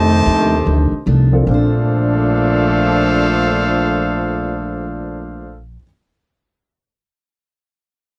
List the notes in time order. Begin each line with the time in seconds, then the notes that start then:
Already playing: F2 C3 D#3 A3 C4 D4 G4 C5 D#5 A5
0.26 D#2 F2 D#3 A3 D4
0.64 D2 F2 D#3 A3 D4
0.91 muted upright bass stroke
1.06 C2 F2 D#3 A3 D4
1.32 F3 A#3 C4 D4 A4
1.42 A#2 F3
1.47 A#1 A#2 F3 A3 C4 D4 A4 C5 F5
1.51 D4 A4 C5